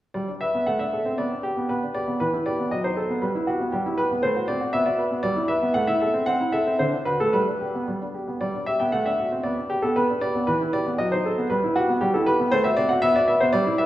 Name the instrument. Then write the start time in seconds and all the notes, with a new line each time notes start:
grand piano
0.14 G3 D5
0.28 D4
0.41 B4 E5
0.54 B3
0.66 A3 F#5
0.79 D4 E5
0.93 A4
1.05 C4
1.18 B3 D5
1.32 D4
1.43 G4
1.57 B3
1.69 B3 B4
1.83 D4
1.95 G4 D5
2.08 B3
2.20 E3 B4
2.34 E4
2.46 G4 D5
2.60 B3
2.71 F#3 D#5
2.84 D#4 C5
2.97 A4
3.10 B3
3.22 G3 B4
3.35 E4
3.47 F#4 G4
3.61 B3
3.72 G3 G4
3.86 E4
3.98 G4 B4
4.11 B3
4.23 A3 C5
4.36 F#4
4.48 C4 D5
4.61 F#4
4.73 B3 E5
4.86 F#4 D5
4.99 B4
5.11 B3
5.23 G3 D5
5.36 E4
5.48 B4 E5
5.62 B3
5.74 A3 F#5
5.87 E4 E5
6.02 A4
6.14 C4
6.26 C4 F#5
6.41 E4
6.52 A4 E5
6.67 C4
6.79 D3 C5
6.93 D4
7.05 F#4 B4
7.20 A3 A4
7.33 G3 B4
7.48 D4
7.61 G4
7.75 B3
7.88 G3
8.01 D4
8.14 G4
8.28 B3
8.41 G3 D5
8.54 D4
8.66 G4 E5
8.80 B3 G5
8.92 A3 F#5
9.06 D4 E5
9.20 F#4
9.32 C4
9.43 B3 D5
9.58 D4
9.70 G4
9.82 B3 A4
9.96 B3 B4
10.10 D4
10.21 G4 D5
10.35 B3
10.47 E3 B4
10.61 E4
10.73 G4 D5
10.87 B3
10.98 F#3 D#5
11.12 D#4 C5
11.25 A4
11.38 B3
11.50 G3 B4
11.64 E4
11.76 F#4 G4
11.89 B3
12.01 G3 G4
12.14 E4 A4
12.26 G4 B4
12.40 B3
12.51 A3 C5
12.64 F#4 E5
12.77 C4 D5
12.89 F#4 F#5
13.02 B3 E5
13.15 F#4 D5
13.28 B4 E5
13.40 B3 C5
13.53 G3 D5
13.67 E4
13.78 B4 E5